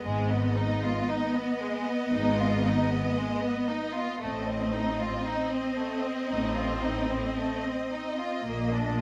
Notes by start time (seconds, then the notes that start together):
0.03 G#1 G#2 G#3 B3 D#5
0.31 B3
0.57 D#4
0.83 F4
1.10 D#4
1.35 B3
1.61 G#3
1.87 B3
2.12 G#1 G#2 D#4
2.39 F4
2.66 D#4
2.90 B3
3.17 G#3
3.43 B3
3.70 D#4
3.96 F4
4.21 A1 A2 A3 C4 D#5
4.48 C4
4.73 D#4
5.01 F4
5.26 D#4
5.52 C4
5.78 A3
6.04 C4
6.31 A1 A2 D#4
6.57 F4
6.84 D#4
7.11 C4
7.38 A3
7.66 C4
7.92 D#4
8.19 F4
8.45 A#1 A#2 A#3
8.74 D4